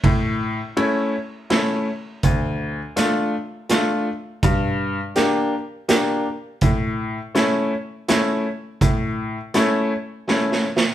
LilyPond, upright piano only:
\new Staff \with { instrumentName = "Upright piano" } { \time 3/4 \tempo 4 = 82 a,4 <a cis' e'>8 r8 <a cis' e'>8 r8 | d,4 <a d' f'>8 r8 <a d' f'>8 r8 | g,4 <bes d' g'>8 r8 <bes d' g'>8 r8 | a,4 <a cis' e'>8 r8 <a cis' e'>8 r8 |
a,4 <a cis' e'>8 r8 <a cis' e'>8 r8 | }